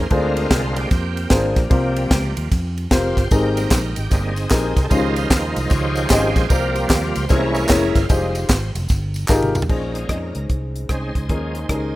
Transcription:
Already playing: C5
0.10 D2 D3 G#3 C4 D4 F4 G#4 A#4 C5, kick, ride
0.37 ride
0.51 C2, kick, snare, ride
0.76 D3 G#3 A#3 C4 G4, ride
0.91 F2, kick, snare, ride
1.17 ride
1.30 G#1 D4 F4 G#4 A#4 C5, kick, snare, ride
1.56 A#1 A#3 G4, kick, snare, ride
1.69 C2 C3 F3 G3 A#3 C4 F4 G4 A#4 C5, kick, ride
1.96 ride
2.11 C#2, kick, snare, ride
2.36 D#2 F3 G3 A#3, ride
2.52 F2, kick, snare, ride
2.78 ride
2.90 F1 C4 F4 G4 A#4 C5, kick, snare, ride
3.17 G1, kick, snare, ride
3.31 G#1 G#2 C4 D#4 G4 G#4 A#4 G5, kick, ride, tambourine
3.56 G3 A#3 C4, ride, tambourine
3.71 A#1, kick, snare, clap, ride, tambourine
3.96 G#1 G4, ride, tambourine
4.10 G1 G3 A#3 C4 D#4 G#4, kick, snare, ride, tambourine
4.36 ride, tambourine
4.50 A#1 C4 D#4 G4 G#4 A#4, kick, snare, clap, ride, tambourine
4.76 C2 G#4, kick, snare, ride, tambourine
4.84 A4
4.89 C#2 C#3 D#3 F3 G#3 C#4 D#4 F4 G4 A#4 C5, kick, ride, tambourine
5.16 ride, tambourine
5.29 D#2 D#4 F4 A#4, kick, snare, clap, ride, tambourine
5.56 C2, ride, tambourine
5.70 C#2 F4 G4 C#5, kick, snare, ride, tambourine
5.95 ride, tambourine
6.09 G#1 C4 C#4 D#4 F4 G4 G#4 D#5, kick, snare, clap, ride, tambourine
6.36 A#1, kick, snare, ride, tambourine
6.48 C2 C3 F3 G3 A#3 C4 F4 G4 A#4 C5, kick, ride, tambourine
6.75 ride, tambourine
6.90 D#2, kick, snare, clap, ride, tambourine
7.15 C#2 C5, ride, tambourine
7.29 C2 C3 E3 G#3 A#3 C#4 E4 G#4 A#4 C5 C#5, kick, snare, ride, tambourine
7.54 ride, tambourine
7.69 F1 C#4 E4 G#4 A#4 C#5, kick, snare, clap, ride, tambourine
7.95 G1 G#3 C5 F5, kick, snare, ride, tambourine
8.09 F1 G3 G#3 D#4 F4 G4 G#4 C5, kick, ride, tambourine
8.35 ride, tambourine
8.49 G#1, kick, snare, clap, ride, tambourine
8.75 F1, ride, tambourine
8.88 G1, kick, snare, ride, tambourine
9.14 ride, tambourine
9.28 G#1 D#4 F4 G4 G#4 A#4, kick, snare, clap, tambourine
9.43 high tom
9.55 C2, mid tom, tambourine
9.62 floor tom
9.69 A#1 A#2 G#3 C#4 D#4 G#4 A#4 C5, kick, crash
9.94 G#3 C4 C#4 D#4, closed hi-hat
10.09 F2 C#4 D#4 G#4 D#5, kick, cross-stick, closed hi-hat
10.35 C#2, closed hi-hat
10.49 C2, kick, cross-stick, closed hi-hat
10.76 closed hi-hat
10.89 C2 G#3 C4 C#4 D#4 G#4 C5, kick, cross-stick, closed hi-hat
11.15 C#2, kick, cross-stick, closed hi-hat
11.28 D#2 D#3 F3 G#3 A#3 C#4 D#4 G#4 A#4, kick, closed hi-hat
11.55 closed hi-hat
11.69 C#2 C#4 D#4 G4 A#4, kick, cross-stick, closed hi-hat
11.74 G#4

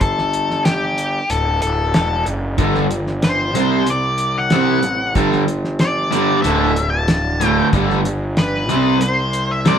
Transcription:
0.01 G1 A4, kick, closed hi-hat
0.18 snare
0.33 closed hi-hat
0.50 snare
0.65 G4, snare, closed hi-hat
0.98 closed hi-hat
1.30 D1 A4, closed hi-hat
1.62 D1 A4, closed hi-hat
1.94 E1, snare, closed hi-hat
2.26 F#1, closed hi-hat
2.58 G1 G2 D3 G3, kick, closed hi-hat
2.75 snare
2.91 closed hi-hat
3.07 snare
3.22 C5, snare, closed hi-hat
3.55 C2 C3 G3 C4, closed hi-hat
3.87 D5, closed hi-hat
4.18 closed hi-hat
4.38 F#5
4.50 C3 G3 C4, snare, closed hi-hat
4.83 A1, closed hi-hat
5.15 G1 G2 D3 G3, kick, closed hi-hat
5.32 snare
5.48 closed hi-hat
5.64 snare
5.79 D5, snare, closed hi-hat
6.11 G2 D3 G3, closed hi-hat
6.42 D1 D2 A2 D3 E5, closed hi-hat
6.76 closed hi-hat
6.90 A5
7.08 snare, closed hi-hat
7.40 D2 A2 D3, closed hi-hat
7.47 G5
7.73 G1 G2 D3 G3, kick, closed hi-hat
7.90 snare
8.05 closed hi-hat
8.37 B4, snare, closed hi-hat
8.69 C2 C3 G3 C4, closed hi-hat
9.01 C5, closed hi-hat
9.33 closed hi-hat
9.51 E5
9.65 C3 G3 C4 D5, snare, closed hi-hat

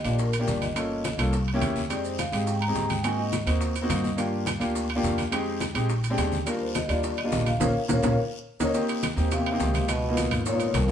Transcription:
0.04 A#1 A#3 D4 F4 G4 D5, high timbale, short guiro, maracas
0.18 A#4, high bongo, maracas
0.33 high conga, high timbale, maracas
0.39 A#3 D4 F4 G4
0.47 G1 D5, high bongo, low bongo, high conga, short guiro, maracas
0.61 D#5, high conga, high timbale, short guiro, maracas
0.75 A#3 C#4 F4 A4, high bongo, high conga, high timbale, long guiro, maracas
0.90 high bongo, high conga
1.04 high bongo, high conga, high timbale, short guiro, maracas
1.17 C2 A#3 C#4 F4 A4, high bongo, high timbale, short guiro, maracas
1.33 high bongo, long guiro, maracas
1.48 high bongo, high conga, high timbale
1.53 A#3 C#4 E4 G4
1.61 F2, high bongo, low bongo, high conga, high timbale, low timbale, short guiro, maracas
1.76 high conga, short guiro, maracas
1.89 G#3 C4 D#4 G4 D5, high bongo, high conga, high timbale, long guiro, maracas
2.04 C5, high conga, maracas
2.18 F5, high bongo, high conga, high timbale, short guiro, maracas
2.32 G#2 G#3 C4 D#4 G4, high conga, high timbale, short guiro, maracas
2.46 G5, high bongo, long guiro, maracas
2.61 A#5, high conga, high timbale
2.68 G#3 C4 D#4 G4
2.75 G#2, high bongo, low bongo, high conga, short guiro, maracas
2.89 G5, high conga, high timbale, short guiro, maracas
3.03 A#3 C4 D#4 F#4 G#5, high bongo, high conga, high timbale, maracas
3.18 D#5, high bongo, high conga
3.32 high bongo, high conga, high timbale, short guiro, maracas
3.46 D#2 A#3 C4 D#4 F#4 C5, high bongo, high timbale, short guiro, maracas
3.61 high bongo, high conga, long guiro, maracas
3.75 high bongo, high conga, high timbale, maracas
3.82 A#3 C4 D#4 F#4
3.89 G2 F5, high bongo, low bongo, high conga, high timbale, short guiro, maracas
4.04 D#5, high conga, short guiro, maracas
4.17 A#3 D4 F4 G4, high bongo, high conga, high timbale, long guiro, maracas
4.32 high conga
4.46 high bongo, high conga, high timbale, short guiro, maracas
4.60 D2 A#3 D4 F4 G4, high conga, high timbale, short guiro, maracas
4.75 high bongo, high conga, long guiro, maracas
4.89 high conga, high timbale
4.95 A#3 D4 F4 G4
5.03 F2, high bongo, low bongo, high conga, short guiro, maracas
5.18 high conga, high timbale, short guiro, maracas
5.31 G#3 C4 D#4 G4, high bongo, high conga, high timbale, long guiro, maracas
5.46 high bongo, high conga
5.60 high bongo, high conga, high timbale, short guiro, maracas
5.74 A#1 G#3 C4 D#4 G4, high bongo, high timbale, short guiro, maracas
5.89 high bongo, high conga, long guiro, maracas
6.04 high bongo, high conga, high timbale, maracas
6.10 G#3 C4 D4 G4
6.18 D#2, high bongo, low bongo, high conga, high timbale, low timbale, short guiro, maracas
6.32 high conga, short guiro, maracas
6.46 G3 A#3 D4 F4 A#4, high bongo, high conga, high timbale, long guiro, maracas
6.61 C5, high conga
6.75 D#5, high bongo, high conga, high timbale, short guiro, maracas
6.88 D#2 G3 A#3 D4 F4 D5, high conga, high timbale, short guiro, maracas
7.03 high bongo, high conga, long guiro, maracas
7.18 D#5, high conga, high timbale
7.24 G3 A#3 D4 F4
7.32 A#1, high bongo, low bongo, high conga, low timbale, short guiro, maracas
7.46 F5, high conga, high timbale, short guiro, maracas
7.60 A#1 A#3 C#4 F4 A#4 C#5 F5, low bongo, high conga, high timbale, long guiro, maracas
7.88 A#1 A#3 C#4 F4 A#4 C#5 F5, low bongo, high conga, high timbale, long guiro, maracas
8.02 A#1 A#3 C#4 F4 A#4 C#5 F5, low bongo, high conga, high timbale, long guiro, maracas
8.60 D#2 A#3 C#4 D#4 A#4 C#5 D#5, low bongo, high conga, high timbale, long guiro, maracas
8.74 A#3 C4 D#4 G4, high bongo, high conga, long guiro, maracas
8.89 high bongo, high conga, high timbale, maracas
9.03 high bongo, high conga, high timbale, short guiro, maracas
9.16 D#2 G#2 A#3 C4 D#4 G4 C5, high bongo, short guiro, maracas
9.31 C3 F5, high bongo, high conga, high timbale, maracas
9.38 A#3 C4 D#4 G4
9.46 high bongo, high conga, high timbale
9.52 A#3 C4 D#4 G4
9.60 C#2, high bongo, low bongo, high conga, low timbale, short guiro, maracas
9.74 high conga, high timbale, short guiro, maracas
9.88 B2 D#5, high bongo, high conga, high timbale, long guiro, maracas
10.03 high bongo, high conga
10.09 A#3 B3 D#4 F4
10.17 high bongo, high conga, high timbale, short guiro, maracas
10.31 G#1, high bongo, high conga, low conga, high timbale, short guiro, maracas
10.45 A#2 C#5, high bongo, high conga, long guiro, maracas
10.52 A#3 B3 D#4 F4
10.60 high conga, high timbale, maracas
10.74 C2 F2 A#4, high bongo, low bongo, high conga, high timbale, short guiro, maracas
10.88 A#3 B3, high conga

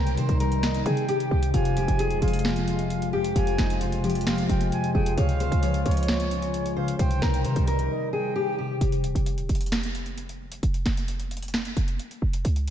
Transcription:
Already playing: C2 C3 G3 C4 D#4 A#4 G5
0.07 closed hi-hat
0.17 C3 D#3 C5, closed hi-hat
0.29 C2, closed hi-hat
0.40 G3 A#4, closed hi-hat, open hi-hat
0.52 closed hi-hat
0.63 D#5, finger snap, snare, closed hi-hat
0.74 closed hi-hat
0.86 C3 C4 G#4 G5, closed hi-hat
0.97 closed hi-hat
1.08 G4, closed hi-hat
1.20 closed hi-hat
1.31 C2 C3 G4
1.43 closed hi-hat
1.54 F1 F2 G#3 F4 G#5, closed hi-hat
1.65 closed hi-hat
1.77 D#1 G#3 G4, closed hi-hat
1.88 F1, closed hi-hat
1.99 C3 G#4, closed hi-hat
2.11 D#1, closed hi-hat
2.22 F1 F3 G#4 F5, closed hi-hat
2.28 closed hi-hat
2.33 closed hi-hat
2.39 closed hi-hat
2.45 finger snap, snare, closed hi-hat
2.56 closed hi-hat
2.68 G#3, closed hi-hat
2.79 closed hi-hat
2.90 closed hi-hat
3.02 closed hi-hat
3.13 F2 G4 G5
3.24 closed hi-hat
3.36 F1 F2 F4 G#5, closed hi-hat
3.47 closed hi-hat
3.58 F1 G#3 D#4, finger snap, snare, closed hi-hat
3.70 closed hi-hat
3.81 C3 F4, closed hi-hat
3.92 closed hi-hat
4.04 F3 G4, closed hi-hat
4.10 closed hi-hat
4.15 closed hi-hat
4.21 closed hi-hat
4.27 F5, finger snap, snare, closed hi-hat
4.38 closed hi-hat
4.49 F1 G#3 G5, closed hi-hat
4.61 closed hi-hat
4.72 G#5, closed hi-hat
4.84 closed hi-hat
4.95 F1 F2 G#4 G5
5.06 closed hi-hat
5.17 C#2 C#3 F4 C#5 F5, closed hi-hat
5.29 closed hi-hat
5.40 C#4 C5, closed hi-hat
5.52 C#2, closed hi-hat
5.63 F3 C#5, closed hi-hat
5.74 closed hi-hat
5.85 C#2 G#3 C#5, closed hi-hat
5.91 closed hi-hat
5.97 closed hi-hat
6.03 closed hi-hat
6.08 finger snap, snare, closed hi-hat
6.20 closed hi-hat
6.31 C#4, closed hi-hat
6.42 closed hi-hat
6.54 closed hi-hat
6.66 closed hi-hat
6.76 C#3 C5 F5
6.88 closed hi-hat
6.99 C2 C3 G3 D#4 C5 G5, closed hi-hat
7.11 closed hi-hat
7.22 C2 C4 A#4, finger snap, snare, closed hi-hat
7.34 closed hi-hat
7.45 C3 D#3 C5, closed hi-hat
7.56 C2, closed hi-hat
7.67 G3 A#4, closed hi-hat, open hi-hat
7.79 closed hi-hat
7.90 D#5
8.13 C4 G#4 G5
8.36 G4
8.58 C3 G4
8.81 F1, closed hi-hat
8.92 closed hi-hat
9.04 D#1, closed hi-hat
9.15 F1, closed hi-hat
9.26 closed hi-hat
9.38 D#1, closed hi-hat
9.49 F1, closed hi-hat
9.55 closed hi-hat
9.61 closed hi-hat
9.66 closed hi-hat
9.72 finger snap, snare, closed hi-hat
9.83 closed hi-hat
9.95 closed hi-hat
10.06 closed hi-hat
10.18 closed hi-hat
10.29 closed hi-hat
10.52 closed hi-hat
10.63 F1, closed hi-hat
10.74 closed hi-hat
10.86 F1, finger snap, snare, closed hi-hat
10.97 closed hi-hat
11.08 closed hi-hat
11.20 closed hi-hat
11.31 closed hi-hat
11.37 closed hi-hat
11.42 closed hi-hat
11.48 closed hi-hat
11.54 finger snap, snare, closed hi-hat
11.65 closed hi-hat
11.77 F1, closed hi-hat
11.88 closed hi-hat
11.99 closed hi-hat
12.11 closed hi-hat
12.22 F1
12.33 closed hi-hat
12.45 C#2, closed hi-hat
12.56 closed hi-hat

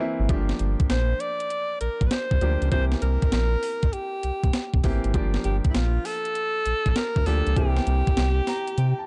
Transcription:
0.00 E3 A#3 C4 E4
0.20 G#1
0.29 G1 F3 A3 D4 G4, kick, closed hi-hat
0.36 A#3
0.49 snare
0.59 G1, closed hi-hat
0.80 kick, closed hi-hat
0.90 A#1 C5, snare, closed hi-hat
1.20 D5, closed hi-hat
1.40 closed hi-hat
1.50 closed hi-hat
1.81 A#1 A#4, closed hi-hat
2.01 A#1, kick, closed hi-hat
2.07 B4
2.11 C5, snare, closed hi-hat
2.31 C2, kick
2.41 D2 F3 A#3 D4 G4, closed hi-hat
2.62 C#2, closed hi-hat
2.71 C2 E3 A#3 C4 G4 C5, kick, closed hi-hat
2.92 snare
3.02 C2 A#4, closed hi-hat
3.22 kick, closed hi-hat
3.32 A#1, snare, closed hi-hat
3.63 open hi-hat
3.83 kick, closed hi-hat
3.93 G4, closed hi-hat
4.23 C2, closed hi-hat
4.44 C2, kick, closed hi-hat
4.53 snare, closed hi-hat
4.74 C2, kick
4.84 A1 E3 A#3 C4 G4, kick, open hi-hat
5.04 G#1, closed hi-hat
5.14 G1 F3 A#3 D4 G4, kick, closed hi-hat
5.34 snare
5.44 G1 G4, closed hi-hat
5.64 kick, closed hi-hat
5.70 E4
5.75 A#1 F4, snare, closed hi-hat
6.05 A4, open hi-hat
6.25 closed hi-hat
6.35 closed hi-hat
6.66 A#1, closed hi-hat
6.86 A#1, kick, closed hi-hat
6.96 A#4, snare, closed hi-hat
7.16 D2, kick
7.26 D2 F3 A#3 D4 G4 A4, open hi-hat
7.47 C#2, closed hi-hat
7.56 C2 E3 A#3 C4 G4, kick, closed hi-hat
7.77 snare
7.87 C2, closed hi-hat
8.07 kick, closed hi-hat
8.17 C2, snare, closed hi-hat
8.47 A#5, snare, open hi-hat
8.67 closed hi-hat
8.78 C3 G5, closed hi-hat
8.99 A5

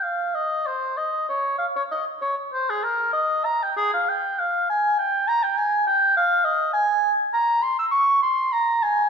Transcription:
0.03 F5
0.34 D#5
0.66 C5
0.97 D#5
1.29 C#5
1.58 F5
1.76 C#5
1.91 D#5
2.22 C#5
2.53 C5
2.70 G#4
2.83 A#4
3.13 D#5
3.45 A#5
3.63 G5
3.77 G#4
3.93 F5
4.09 G5
4.39 F5
4.70 G#5
4.99 G5
5.28 A#5
5.43 G5
5.57 G#5
5.87 G5
6.17 F5
6.44 D#5
6.73 G#5
7.33 A#5
7.63 C6
7.79 E6
7.91 C#6
8.22 C6
8.52 A#5
8.83 G#5

